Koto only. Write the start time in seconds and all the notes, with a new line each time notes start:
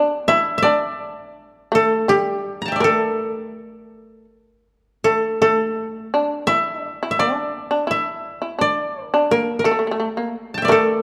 Already playing: D5
0.28 E5
0.58 E5
0.63 D5
1.75 A4
2.09 G4
2.62 A5 A#5
2.68 G5
2.72 D5 E5
2.80 A4 A#4
5.04 A4
5.42 A4
6.47 E5
6.86 D5
7.11 E5
7.19 D5
7.91 E5
8.61 D5
9.06 A#4
9.31 A#4
9.59 A#4
9.65 A4
10.54 G5 A5
10.62 D5 E5
10.68 A4 A#4